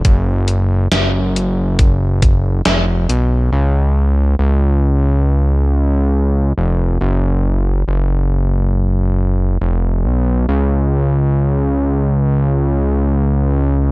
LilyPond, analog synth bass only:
\new Staff \with { instrumentName = "Analog synth bass" } { \clef bass \time 4/4 \key ces \lydian \tempo 4 = 69 ges,,4 ges,,2 f,,8 ces,8 | des,4 des,2~ des,8 f,,8 | ges,,4 ges,,2 f,,8 ces,8 | des,1 | }